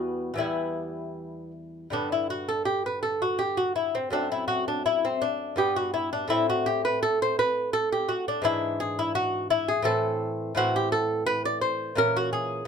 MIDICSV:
0, 0, Header, 1, 2, 480
1, 0, Start_track
1, 0, Key_signature, 1, "major"
1, 0, Tempo, 775194
1, 1193, Time_signature, 3, 2, 24, 8
1, 1193, Tempo, 735294
1, 3113, Tempo, 719424
1, 5513, Tempo, 703400
1, 8385, End_track
2, 0, Start_track
2, 0, Title_t, "Lute"
2, 0, Program_c, 0, 24
2, 0, Note_on_c, 0, 40, 59
2, 0, Note_on_c, 0, 52, 49
2, 0, Note_on_c, 0, 55, 53
2, 0, Note_on_c, 0, 59, 71
2, 0, Note_on_c, 0, 66, 89
2, 201, Note_off_c, 0, 40, 0
2, 208, Note_on_c, 0, 40, 57
2, 213, Note_off_c, 0, 52, 0
2, 218, Note_off_c, 0, 59, 0
2, 219, Note_off_c, 0, 66, 0
2, 220, Note_on_c, 0, 52, 50
2, 221, Note_off_c, 0, 55, 0
2, 231, Note_on_c, 0, 55, 47
2, 237, Note_on_c, 0, 64, 63
2, 247, Note_on_c, 0, 59, 45
2, 933, Note_off_c, 0, 64, 0
2, 938, Note_off_c, 0, 59, 0
2, 1152, Note_off_c, 0, 40, 0
2, 1158, Note_off_c, 0, 52, 0
2, 1164, Note_off_c, 0, 55, 0
2, 1178, Note_on_c, 0, 43, 50
2, 1186, Note_on_c, 0, 50, 43
2, 1192, Note_on_c, 0, 59, 43
2, 1197, Note_on_c, 0, 62, 70
2, 1314, Note_off_c, 0, 62, 0
2, 1321, Note_on_c, 0, 64, 60
2, 1435, Note_off_c, 0, 64, 0
2, 1438, Note_on_c, 0, 66, 65
2, 1556, Note_off_c, 0, 66, 0
2, 1557, Note_on_c, 0, 69, 70
2, 1665, Note_off_c, 0, 69, 0
2, 1668, Note_on_c, 0, 67, 73
2, 1789, Note_off_c, 0, 67, 0
2, 1802, Note_on_c, 0, 71, 61
2, 1908, Note_off_c, 0, 71, 0
2, 1911, Note_on_c, 0, 69, 65
2, 2030, Note_off_c, 0, 69, 0
2, 2036, Note_on_c, 0, 66, 63
2, 2146, Note_on_c, 0, 67, 80
2, 2153, Note_off_c, 0, 66, 0
2, 2268, Note_off_c, 0, 67, 0
2, 2268, Note_on_c, 0, 66, 71
2, 2385, Note_off_c, 0, 66, 0
2, 2387, Note_on_c, 0, 64, 63
2, 2511, Note_off_c, 0, 64, 0
2, 2513, Note_on_c, 0, 60, 60
2, 2599, Note_off_c, 0, 43, 0
2, 2604, Note_off_c, 0, 50, 0
2, 2607, Note_off_c, 0, 59, 0
2, 2615, Note_on_c, 0, 42, 52
2, 2619, Note_off_c, 0, 60, 0
2, 2622, Note_on_c, 0, 57, 43
2, 2627, Note_on_c, 0, 60, 46
2, 2631, Note_on_c, 0, 62, 75
2, 2750, Note_off_c, 0, 62, 0
2, 2753, Note_on_c, 0, 64, 68
2, 2855, Note_off_c, 0, 64, 0
2, 2858, Note_on_c, 0, 66, 73
2, 2985, Note_off_c, 0, 66, 0
2, 2990, Note_on_c, 0, 62, 62
2, 3103, Note_off_c, 0, 62, 0
2, 3106, Note_on_c, 0, 64, 73
2, 3224, Note_off_c, 0, 60, 0
2, 3231, Note_off_c, 0, 64, 0
2, 3232, Note_on_c, 0, 60, 65
2, 3345, Note_on_c, 0, 62, 78
2, 3355, Note_off_c, 0, 60, 0
2, 3559, Note_off_c, 0, 42, 0
2, 3562, Note_off_c, 0, 57, 0
2, 3573, Note_on_c, 0, 43, 58
2, 3579, Note_off_c, 0, 62, 0
2, 3582, Note_on_c, 0, 59, 46
2, 3589, Note_on_c, 0, 67, 82
2, 3710, Note_off_c, 0, 67, 0
2, 3711, Note_on_c, 0, 66, 72
2, 3823, Note_off_c, 0, 66, 0
2, 3826, Note_on_c, 0, 64, 69
2, 3946, Note_off_c, 0, 64, 0
2, 3953, Note_on_c, 0, 62, 68
2, 4041, Note_off_c, 0, 43, 0
2, 4046, Note_off_c, 0, 59, 0
2, 4053, Note_on_c, 0, 45, 60
2, 4061, Note_on_c, 0, 57, 46
2, 4065, Note_on_c, 0, 60, 50
2, 4066, Note_off_c, 0, 62, 0
2, 4069, Note_on_c, 0, 64, 90
2, 4186, Note_off_c, 0, 64, 0
2, 4199, Note_on_c, 0, 66, 73
2, 4309, Note_on_c, 0, 67, 85
2, 4312, Note_off_c, 0, 66, 0
2, 4429, Note_off_c, 0, 67, 0
2, 4434, Note_on_c, 0, 71, 80
2, 4550, Note_off_c, 0, 71, 0
2, 4553, Note_on_c, 0, 69, 90
2, 4673, Note_off_c, 0, 69, 0
2, 4683, Note_on_c, 0, 72, 87
2, 4793, Note_off_c, 0, 72, 0
2, 4795, Note_on_c, 0, 71, 90
2, 5021, Note_off_c, 0, 71, 0
2, 5024, Note_on_c, 0, 69, 95
2, 5149, Note_off_c, 0, 69, 0
2, 5152, Note_on_c, 0, 67, 82
2, 5260, Note_on_c, 0, 66, 71
2, 5273, Note_off_c, 0, 67, 0
2, 5386, Note_off_c, 0, 66, 0
2, 5390, Note_on_c, 0, 62, 75
2, 5479, Note_off_c, 0, 45, 0
2, 5481, Note_on_c, 0, 44, 68
2, 5482, Note_off_c, 0, 57, 0
2, 5485, Note_off_c, 0, 60, 0
2, 5488, Note_off_c, 0, 62, 0
2, 5491, Note_on_c, 0, 52, 53
2, 5496, Note_on_c, 0, 62, 58
2, 5501, Note_on_c, 0, 64, 90
2, 5736, Note_off_c, 0, 64, 0
2, 5742, Note_on_c, 0, 68, 90
2, 5865, Note_off_c, 0, 68, 0
2, 5870, Note_on_c, 0, 64, 79
2, 5978, Note_off_c, 0, 64, 0
2, 5981, Note_on_c, 0, 66, 87
2, 6214, Note_off_c, 0, 66, 0
2, 6222, Note_on_c, 0, 64, 89
2, 6344, Note_off_c, 0, 64, 0
2, 6345, Note_on_c, 0, 68, 85
2, 6424, Note_off_c, 0, 44, 0
2, 6429, Note_off_c, 0, 52, 0
2, 6432, Note_off_c, 0, 62, 0
2, 6441, Note_on_c, 0, 45, 67
2, 6450, Note_on_c, 0, 52, 56
2, 6455, Note_on_c, 0, 60, 57
2, 6456, Note_off_c, 0, 68, 0
2, 6459, Note_on_c, 0, 69, 96
2, 6924, Note_off_c, 0, 45, 0
2, 6929, Note_off_c, 0, 52, 0
2, 6929, Note_off_c, 0, 69, 0
2, 6931, Note_off_c, 0, 60, 0
2, 6934, Note_on_c, 0, 45, 62
2, 6942, Note_on_c, 0, 52, 57
2, 6949, Note_on_c, 0, 60, 55
2, 6952, Note_on_c, 0, 66, 98
2, 7072, Note_off_c, 0, 66, 0
2, 7078, Note_on_c, 0, 67, 82
2, 7186, Note_off_c, 0, 67, 0
2, 7189, Note_on_c, 0, 69, 89
2, 7421, Note_off_c, 0, 69, 0
2, 7423, Note_on_c, 0, 71, 101
2, 7549, Note_off_c, 0, 71, 0
2, 7553, Note_on_c, 0, 74, 81
2, 7659, Note_off_c, 0, 74, 0
2, 7662, Note_on_c, 0, 72, 78
2, 7879, Note_off_c, 0, 45, 0
2, 7883, Note_off_c, 0, 52, 0
2, 7886, Note_off_c, 0, 60, 0
2, 7894, Note_on_c, 0, 46, 59
2, 7899, Note_on_c, 0, 52, 53
2, 7900, Note_off_c, 0, 72, 0
2, 7905, Note_on_c, 0, 61, 54
2, 7913, Note_on_c, 0, 70, 100
2, 8035, Note_off_c, 0, 70, 0
2, 8038, Note_on_c, 0, 66, 80
2, 8146, Note_off_c, 0, 66, 0
2, 8149, Note_on_c, 0, 68, 74
2, 8366, Note_off_c, 0, 46, 0
2, 8369, Note_off_c, 0, 52, 0
2, 8372, Note_off_c, 0, 61, 0
2, 8379, Note_off_c, 0, 68, 0
2, 8385, End_track
0, 0, End_of_file